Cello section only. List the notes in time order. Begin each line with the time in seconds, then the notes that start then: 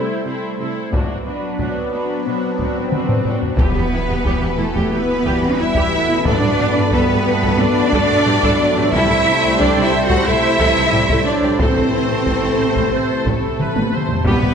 0.26 C3
0.59 C3
0.92 B2
1.26 B2
1.59 B2
1.93 B2
2.26 B2
2.60 B2
2.92 B2
3.26 B2
3.59 B3
4.59 A3
4.92 B3
5.59 E4
6.25 D4
6.93 B3
7.59 D4
8.93 E4
9.59 D4
9.82 E4
10.04 F#4
10.26 E4
11.26 D4
11.59 C4
14.26 B3